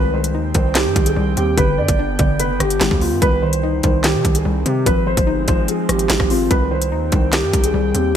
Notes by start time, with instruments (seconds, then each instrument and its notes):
Already playing: 808-style bass C2, synth pluck D#3, ambient pad D#3 C4 G5, grand piano B4
0.14 synth pluck D#3, grand piano C5
0.24 closed hi-hat
0.34 808-style bass D#2, synth pluck D#4
0.54 808-style bass C2, synth pluck D#3, grand piano C5, kick, closed hi-hat
0.75 synth pluck D#3, grand piano G4, snare, clap, closed hi-hat
0.86 808-style bass G2
0.95 808-style bass C2, synth pluck D#3, kick, closed hi-hat
1.06 grand piano G#4, closed hi-hat
1.16 808-style bass C2, synth pluck G3
1.37 808-style bass D#2, synth pluck C4, grand piano G4, closed hi-hat
1.57 808-style bass G1, synth pluck D3, ambient pad D3 B3, grand piano B4, kick, closed hi-hat
1.78 808-style bass G2, synth pluck D3, grand piano D5
1.88 808-style bass G1, kick, closed hi-hat
1.99 synth pluck D4
2.19 808-style bass G1, synth pluck D3, grand piano D5, kick, closed hi-hat
2.39 808-style bass F1, synth pluck D3, grand piano B4, closed hi-hat
2.50 808-style bass G1
2.60 808-style bass G1, synth pluck D3, grand piano G4, cross-stick, closed hi-hat
2.70 closed hi-hat
2.81 808-style bass G1, synth pluck G3, snare, clap, closed hi-hat
2.91 808-style bass D2, kick
3.01 synth pluck B3, grand piano F4, open hi-hat
3.12 808-style bass G2
3.22 808-style bass C2, synth pluck D#3, ambient pad D#3 C4, grand piano B4, kick, closed hi-hat
3.42 synth pluck D#3, grand piano C5
3.53 closed hi-hat
3.63 synth pluck D#4
3.83 808-style bass C2, synth pluck D#3, grand piano C5, kick, closed hi-hat
4.04 synth pluck D#3, grand piano G4, snare, clap, closed hi-hat
4.14 808-style bass C3
4.25 808-style bass C2, synth pluck D#3, kick, closed hi-hat
4.35 grand piano G#4, closed hi-hat
4.45 808-style bass C2, synth pluck G3
4.66 808-style bass C3, synth pluck C4, grand piano G4, closed hi-hat
4.86 808-style bass G#1, synth pluck F3, ambient pad F3 G#3, grand piano B4, kick, closed hi-hat
5.07 synth pluck F3, grand piano C5
5.17 808-style bass G1, kick, closed hi-hat
5.27 synth pluck D#4
5.48 808-style bass G#1, synth pluck F3, grand piano C5, kick, closed hi-hat
5.68 synth pluck F3, grand piano G#4, closed hi-hat
5.89 808-style bass G#1, synth pluck F3, grand piano G4, cross-stick, closed hi-hat
5.99 closed hi-hat
6.09 808-style bass G#1, synth pluck G#3, snare, clap, closed hi-hat
6.20 808-style bass G#1, kick, cross-stick
6.30 synth pluck C4, grand piano F4, open hi-hat
6.50 808-style bass C2, synth pluck D#3, ambient pad D#3 G5, grand piano B4, kick, closed hi-hat
6.71 synth pluck D#3, grand piano C5
6.82 closed hi-hat
6.92 808-style bass D#2, synth pluck D#4
7.12 808-style bass C2, synth pluck D#3, grand piano C5, kick, closed hi-hat
7.33 synth pluck D#3, grand piano G4, snare, clap, closed hi-hat
7.43 808-style bass G2
7.53 808-style bass C2, synth pluck D#3, kick, closed hi-hat
7.64 grand piano G#4, closed hi-hat
7.74 808-style bass C2, synth pluck G3
7.94 808-style bass D#2, synth pluck C4, grand piano G4, closed hi-hat